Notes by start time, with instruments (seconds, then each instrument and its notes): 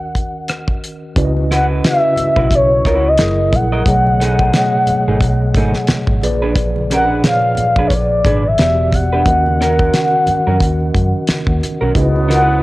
Already playing: fingered electric bass D#2, tine electric piano D#3 C#4 F#4 A#4 D#5, soft synth lead F#5
0.15 kick, closed hi-hat
0.48 cross-stick, closed hi-hat
0.68 kick
0.84 closed hi-hat
1.16 fingered electric bass C#2, tine electric piano C#3 C#4 E4 F#4 B4 D5, kick, closed hi-hat, low conga
1.25 tine electric piano D#5
1.37 high conga
1.51 clean electric guitar E4 F#4 B4, soft synth lead F#5, snare, closed hi-hat
1.84 tine electric piano C#3 C#4 E4 F#4 B4 D#5, soft synth lead E5, snare, closed hi-hat, high conga
1.93 tine electric piano E5
2.16 muted fingered electric bass stroke, closed hi-hat, low conga
2.36 fingered electric bass B1, clean electric guitar E4 F#4 B4, kick
2.51 muted clean electric guitar stroke, kick, closed hi-hat, muted conga
2.55 soft synth lead C#5
2.85 fingered electric bass C#2, clean electric guitar E4 F#4 B4, kick, snare, closed hi-hat, high conga
3.08 soft synth lead D#5
3.17 fingered electric bass F#1, tine electric piano F#3 E4 G#4 A#4 D#5, snare, closed hi-hat, high conga
3.38 muted conga
3.52 fingered electric bass A#1, soft synth lead F#5, kick, closed hi-hat, high conga, low conga
3.72 clean electric guitar E4 A#4 D#5
3.86 fingered electric bass B1, tine electric piano B2 F#3 A3 G#4 C#5 D#5, kick, closed hi-hat, muted conga, low conga
4.07 muted conga, high conga
4.20 clean electric guitar A3 D#4 G#4, snare, closed hi-hat
4.39 kick
4.53 tine electric piano B2 F#3 A3 G#4 C#5 D#5, snare, closed hi-hat, high conga
4.72 muted conga
4.86 muted fingered electric bass stroke, closed hi-hat, low conga
5.08 fingered electric bass G#1, clean electric guitar A3 D#4 G#4
5.21 fingered electric bass B1, muted clean electric guitar stroke, kick, closed hi-hat
5.54 fingered electric bass G#1, clean electric guitar A3 D#4 G#4, kick, closed hi-hat, high conga
5.74 snare
5.87 muted fingered electric bass stroke, snare, closed hi-hat, muted conga, high conga
6.07 fingered electric bass G#1, kick
6.22 fingered electric bass A#1, tine electric piano A#2 F3 G#4 B4 D5, closed hi-hat, high conga, low conga
6.42 clean electric guitar D4 G#4 B4
6.56 kick, closed hi-hat, low conga
6.76 muted conga, high conga
6.90 clean electric guitar C#4 G4 A#4, soft synth lead F#5, snare, closed hi-hat
7.04 clean electric guitar D4 G#4 B4
7.23 tine electric piano A#2 F3 G#4 B4 C#5, snare, closed hi-hat, muted conga, high conga
7.27 soft synth lead F5
7.32 tine electric piano D5
7.41 muted conga
7.55 muted fingered electric bass stroke, closed hi-hat, low conga
7.76 fingered electric bass A#1, clean electric guitar D4 G#4 B4, kick
7.87 soft synth lead C#5, kick
7.91 soft synth lead D5, muted clean electric guitar stroke, closed hi-hat
8.10 muted conga
8.24 fingered electric bass G#1, clean electric guitar D4 G#4 B4, kick, closed hi-hat, high conga
8.47 soft synth lead E5
8.58 fingered electric bass E1, tine electric piano E3 B3 F#4 G4 D5, snare, closed hi-hat, high conga
8.91 soft synth lead F#5, kick, closed hi-hat, high conga, low conga
9.13 clean electric guitar D4 G4 B4
9.25 fingered electric bass D#2, tine electric piano D#3 C#4 F#4 A#4 D#5, kick, closed hi-hat, muted conga, low conga
9.46 muted conga, high conga
9.61 clean electric guitar C#4 F#4 A#4, snare, closed hi-hat
9.79 kick
9.92 tine electric piano D#3 C#4 F#4 A#4 F#5, snare, closed hi-hat, muted conga, high conga
10.11 muted conga
10.26 muted fingered electric bass stroke, closed hi-hat, low conga
10.47 fingered electric bass F#2, clean electric guitar C#4 F#4 A#4, high conga
10.60 fingered electric bass D#2, kick, closed hi-hat
10.80 muted conga
10.94 fingered electric bass F#2, kick, closed hi-hat, high conga
11.27 muted fingered electric bass stroke, snare, closed hi-hat, muted conga, high conga
11.47 fingered electric bass D#2, kick
11.61 closed hi-hat, high conga, low conga
11.81 fingered electric bass B1, clean electric guitar C#4 F#4 A#4
11.95 fingered electric bass C#2, trombone section G#2 F#3 B3, tine electric piano C#3 C#4 D#4 F#4 B4 D#5, kick, closed hi-hat, low conga
12.02 tine electric piano E4
12.16 high conga
12.29 clean electric guitar D#4 F4 A#4, soft synth lead F#5, snare, closed hi-hat
12.42 clean electric guitar E4 F#4 B4